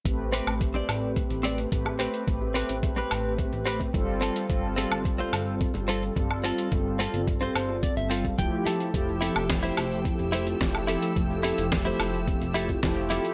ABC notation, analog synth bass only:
X:1
M:4/4
L:1/16
Q:1/4=108
K:Am
V:1 name="Analog synth bass" clef=bass
A,,,3 A,,,3 A,,,3 A,,,3 A,,,3 z | A,,,3 A,,,3 A,,,3 A,,,3 G,,,3 z | G,,,3 G,,,3 G,,,3 G,,,3 G,,,3 z | G,,,3 G,,,3 G,,,3 G,,,3 D,,, z3 |
F,,,3 F,,,3 F,,,3 F,,,3 F,,,3 z | F,,,3 F,,,3 F,,,3 F,,,3 F,,,3 z |]